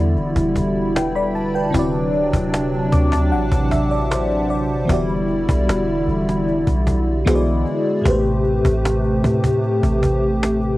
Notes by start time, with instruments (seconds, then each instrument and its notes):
Already playing: 808-style bass E2, analog synth pad D3 G3 E4, fm electric piano E3 B3 F#4 G4 D5
0.16 808-style bass D1, cajon slap
0.36 808-style bass E1, cajon bass
0.56 cajon bass
0.95 fm electric piano B4 G5, cajon slap
1.15 fm electric piano D5 B5, cajon slap
1.35 fm electric piano A5, cajon slap
1.54 fm electric piano B4 G5
1.70 fm electric piano D3 C4, analog synth pad F#3 D4
1.74 808-style bass D1, analog synth pad C3, fm electric piano E4 F#4, cajon bass
1.78 fm electric piano D5
1.93 cajon slap
2.13 cajon slap
2.33 808-style bass D1, cajon bass
2.54 cajon slap
2.72 cajon slap
2.92 808-style bass D2, fm electric piano D6, cajon bass
3.12 fm electric piano A5, cajon bass, cajon slap
3.32 808-style bass A1, fm electric piano F#5, cajon slap
3.52 808-style bass A1, cajon bass
3.71 fm electric piano E5, cajon bass
3.91 fm electric piano D5
4.11 fm electric piano C5, cajon slap
4.30 cajon slap
4.50 fm electric piano D5, cajon slap
4.85 fm electric piano E3 B3
4.90 808-style bass E1, analog synth pad D3 G3 E4, fm electric piano F#4 G4, cajon bass
4.94 fm electric piano D5
5.09 cajon slap
5.29 cajon slap
5.49 808-style bass B1, cajon bass
5.69 808-style bass E1, cajon slap
5.88 cajon slap
6.08 808-style bass E1, cajon slap
6.29 cajon slap
6.48 cajon slap
6.67 808-style bass B1, cajon bass
6.87 cajon bass
7.25 808-style bass B1, fm electric piano E3 B3 F#4 G#4, analog synth pad G#3 E4, cajon slap
7.29 fm electric piano C5
7.35 fm electric piano D5
7.46 cajon slap
7.66 cajon slap
8.01 fm electric piano A2 A3, analog synth pad C3 A3 G4
8.05 808-style bass A1, fm electric piano G4 B4, cajon bass
8.10 fm electric piano C5
8.25 cajon slap
8.44 cajon slap
8.65 808-style bass A1, cajon bass
8.85 cajon slap
9.04 cajon slap
9.24 808-style bass A2, cajon bass
9.43 cajon bass
9.64 cajon slap
9.83 808-style bass A1, cajon bass
10.03 cajon bass
10.43 cajon slap
10.62 cajon slap